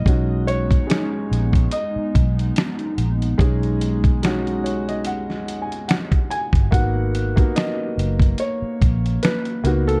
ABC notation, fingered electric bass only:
X:1
M:4/4
L:1/16
Q:"Swing 16ths" 1/4=72
K:B
V:1 name="Fingered electric bass" clef=bass
B,,,4 z2 A,,,2 z2 B,,,2 z2 A,,,2 | B,,,12 z3 =G,,, | G,,,4 z2 F,,,2 z2 A,,,2 z2 C,,2 |]